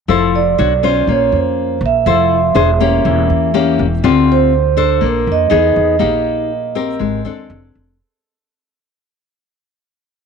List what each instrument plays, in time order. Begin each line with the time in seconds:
0.08 upright bass F1, nylon-string guitar F3 E4 A4 C5
0.36 vibraphone D5
0.58 upright bass B1, nylon-string guitar D4 F#4 C#5
0.83 nylon-string guitar C#4 F4 C5
1.07 upright bass A#1, nylon-string guitar A#3, vibraphone C#5
1.32 upright bass F2, vibraphone C5
1.81 upright bass A#1
1.86 vibraphone E5
2.06 upright bass F1, nylon-string guitar F3 E4 A4 C5
2.55 upright bass E1, nylon-string guitar D4 G#4 C5
2.80 nylon-string guitar A#3 C#4 G4
3.05 upright bass E1, nylon-string guitar E3
3.30 upright bass E2
3.54 nylon-string guitar A#3 C#4 G4
3.79 upright bass E1
4.04 upright bass D2, nylon-string guitar D3 C4 F4 G4
4.32 vibraphone C5
4.77 nylon-string guitar D4 A4 C5
5.01 upright bass A#1, nylon-string guitar A#3
5.06 vibraphone A#4
5.27 upright bass F2
5.32 vibraphone D#5
5.50 upright bass E2, nylon-string guitar B3 D#4 G#4
5.76 upright bass E2
5.99 upright bass A#1, nylon-string guitar A#3 D#4 G4
6.75 nylon-string guitar C4 G4 A#4
6.99 upright bass G#1, nylon-string guitar G#3
7.25 upright bass D#2, nylon-string guitar C4 D4 A4
7.50 upright bass F1
7.75 upright bass F1